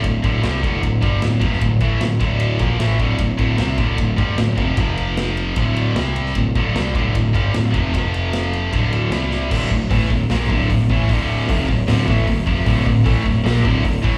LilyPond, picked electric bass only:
\new Staff \with { instrumentName = "Picked electric bass" } { \clef bass \time 4/4 \key d \minor \tempo 4 = 152 d,,8 d,,8 c,8 d,,8 d,,8 g,,8 d,,8 f,,8 | d,,8 a,,8 d,,8 d,,4 bes,,8 a,,8 d,,8 | d,,8 d,,8 c,8 d,,8 d,,8 g,,8 d,,8 f,,8 | f,,2 d,,4 c,4 |
d,,8 d,,8 c,8 d,,8 d,,8 g,,8 d,,8 f,,8 | f,,2 d,,4 c,4 | d,,8 d,,8 a,,8 d,,8 bes,,8 d,,8 d,,8 a,,8 | d,,4 f,,8 d,,8 d,,8 a,,8 d,,8 f,,8 |
d,,8 d,,8 a,,8 d,,8 bes,,8 d,,8 d,,8 a,,8 | }